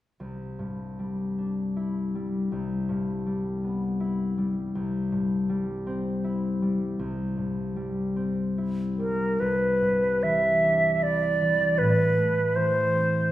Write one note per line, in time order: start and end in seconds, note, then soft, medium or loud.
0.20 2.51 C2 soft
0.59 2.54 G2 soft
0.99 2.14 G3 soft
1.38 2.55 D4 soft
1.76 3.99 E4 soft
2.15 3.25 G3 soft
2.52 4.74 C2 soft
2.89 4.78 G2 soft
3.27 4.37 G3 soft
3.64 4.78 B3 soft
4.00 6.23 E4 soft
4.38 5.48 G3 soft
4.75 6.98 C2 soft
5.12 7.36 G2 soft
5.49 6.61 G3 soft
5.87 8.15 C4 soft
6.24 8.57 E4 soft
6.62 7.75 G3 soft
6.99 9.40 C2 soft
7.37 9.43 G2 soft
7.76 8.98 G3 soft
8.16 12.06 C4 soft
8.58 11.01 E4 soft
8.98 11.82 G3 soft
8.98 9.41 A#4 soft
9.40 11.82 C2 soft
9.40 10.25 B4 soft
9.81 11.82 G2 soft
10.23 11.40 E3 soft
10.23 11.04 E5 soft
10.64 11.82 D4 soft
11.02 13.32 E4 soft
11.02 11.80 D5 soft
11.41 11.82 E3 soft
11.78 13.32 A2 soft
11.78 12.57 B4 soft
12.17 13.32 A3 soft
12.56 13.32 E3 soft
12.56 13.32 C5 soft
12.95 13.32 C4 soft